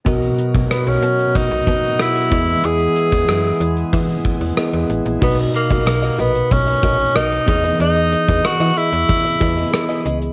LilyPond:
<<
  \new Staff \with { instrumentName = "Clean electric guitar" } { \time 4/4 \key b \major \tempo 4 = 93 r1 | r1 | <fis' ais' dis''>8 r16 <fis' ais' dis''>16 r16 <fis' ais' dis''>16 <fis' ais' dis''>16 r8. <fis' ais' dis''>16 r16 <fis' ais' dis''>16 r8 <gis' b' dis''>16 | <gis' b' dis''>16 r8 <gis' b' dis''>16 r16 <gis' b' dis''>16 <gis' b' dis''>16 r8. <gis' b' dis''>16 <gis' b' dis''>16 r16 <gis' b' dis''>16 <gis' b' dis''>16 r16 | }
  \new Staff \with { instrumentName = "Tine electric piano" } { \time 4/4 \key b \major <b fis' ais' dis''>2.~ <b fis' ais' dis''>8 <b e' gis' dis''>8~ | <b e' gis' dis''>2. <b e' gis' dis''>4 | <dis' fis' ais' dis''>2.~ <dis' fis' ais' dis''>8 <b gis' dis''>8~ | <b gis' dis''>2~ <b gis' dis''>8 <b e' gis' dis''>4. | }
  \new Staff \with { instrumentName = "Tine electric piano" } { \clef bass \time 4/4 \key b \major b,4. r2 e8~ | e4 r2. | b,4. r2 e8~ | e4 r2. | }
  \new Staff \with { instrumentName = "Tenor saxophone" } { \time 4/4 \key b \major r4 b16 cis'8. dis'4 e'4 | gis'2 r2 | b8 ais4 b8 cis'4 dis'4 | dis'4 fis'8 e'2 r8 | }
  \new Staff \with { instrumentName = "Pipe organ" } { \time 4/4 \key b \major <fis fis' ais'>2.~ <fis fis' ais'>8 <e gis e'>8~ | <e gis e'>1 | r1 | r1 | }
  \new Staff \with { instrumentName = "Pipe organ" } { \time 4/4 \key b \major b1~ | b1 | r1 | r1 | }
  \new Staff \with { instrumentName = "FM bass" } { \clef bass \time 4/4 \key b \major b,,8 r16 b,,16 r16 b,,16 b,8 r16 b,,16 b,8 r8 e,8 | e,8 r16 e,16 fis,8 e,8 e8 r16 e,16 r16 e,16 a,,16 ais,,16 | b,,8 r16 b,,16 b,,8 ais,,8 b,,8 ais,,8 b,,8 e,8 | e,8. e,16 e16 e16 r16 e,16 r8 e,8 r8 cis,8 | }
  \new DrumStaff \with { instrumentName = "Drums" } \drummode { \time 4/4 <hh bd>16 hh16 hh16 <hh bd>16 <hh ss>16 hh16 hh16 hh16 <hh bd>16 hh16 <hh bd>16 hh16 <hh ss>16 hh16 <hh bd>16 hh16 | hh16 hh16 hh16 <hh bd>16 <hh ss>16 hh16 hh16 hh16 <hh bd>16 hh16 <hh bd>16 hh16 <hh ss>16 hh16 hh16 hh16 | <cymc bd>16 hh16 hh16 <hh bd>16 <hh ss>16 hh16 hh16 hh16 <hh bd>16 hh16 <hh bd>16 hh16 <hh ss>16 hh16 <hh bd>16 hh16 | hh16 hh16 hh16 <hh bd>16 <hh ss>16 hh16 hh16 hh16 <hh bd>16 hh16 <hh bd>16 hh16 <hh ss>16 hh16 hh16 hh16 | }
>>